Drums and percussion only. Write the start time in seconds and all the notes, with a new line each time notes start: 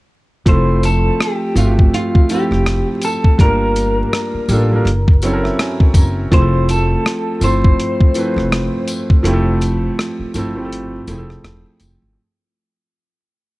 0.46 kick, closed hi-hat
0.83 closed hi-hat, tambourine
1.20 cross-stick, closed hi-hat
1.56 closed hi-hat, tambourine
1.79 kick
1.94 closed hi-hat
2.15 kick
2.29 closed hi-hat, tambourine
2.52 cross-stick
2.66 cross-stick, closed hi-hat
3.01 closed hi-hat, tambourine
3.24 kick
3.39 kick, closed hi-hat
3.76 closed hi-hat, tambourine
4.13 cross-stick, closed hi-hat
4.49 closed hi-hat, tambourine
4.87 closed hi-hat
5.08 kick
5.22 closed hi-hat, tambourine
5.45 cross-stick
5.59 cross-stick, closed hi-hat
5.80 kick
5.94 kick, closed hi-hat, tambourine
6.32 kick, closed hi-hat
6.69 closed hi-hat, tambourine
7.06 cross-stick, closed hi-hat
7.41 closed hi-hat, tambourine
7.64 kick
7.80 closed hi-hat
8.01 kick
8.14 closed hi-hat, tambourine
8.38 cross-stick
8.52 cross-stick, closed hi-hat
8.88 closed hi-hat, tambourine
9.10 kick
9.25 closed hi-hat
9.61 closed hi-hat, tambourine
9.99 cross-stick, closed hi-hat
10.34 closed hi-hat, tambourine
10.73 closed hi-hat
11.07 closed hi-hat, tambourine
11.30 cross-stick
11.44 cross-stick, closed hi-hat
11.80 closed hi-hat, tambourine